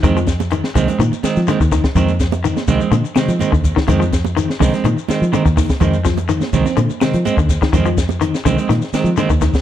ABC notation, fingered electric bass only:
X:1
M:4/4
L:1/16
Q:1/4=125
K:Fdor
V:1 name="Fingered electric bass" clef=bass
F,,6 C,, z B,, z2 F, z E,,2 z | F,,6 C,, z B,, z2 F, z E,,2 z | F,,6 C,, z B,, z2 F, z E,,2 z | F,,6 C,, z B,, z2 F, z E,,2 z |
F,,6 C,, z B,, z2 F, z E,,2 z |]